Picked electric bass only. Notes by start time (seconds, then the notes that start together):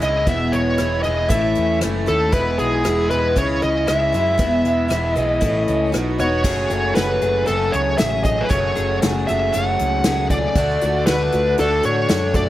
0.02 C#2
0.28 E1
0.53 E1
0.80 E1
1.07 E1
1.30 A1
1.58 E2
1.84 F#1
2.09 D#2
2.34 E1
2.61 B1
2.87 E1
3.12 E1
3.37 C#2
3.64 C#2
3.89 C#2
4.15 F#2
4.40 E1
4.65 E1
4.91 E1
5.17 B1
5.42 A1
5.69 C#2
5.95 B1
6.20 E1
6.45 F#1
6.71 F#1
6.97 F#1
7.22 F#1
7.49 F#1
7.74 C#2
8.01 A1
8.51 F#1
8.78 F#1
9.04 F#1
9.30 F#1
9.56 F#1
9.81 C#2
10.06 C#2
10.56 D2
10.84 D2
11.09 D2
11.34 D2
11.60 D2
11.85 A2
12.11 F#2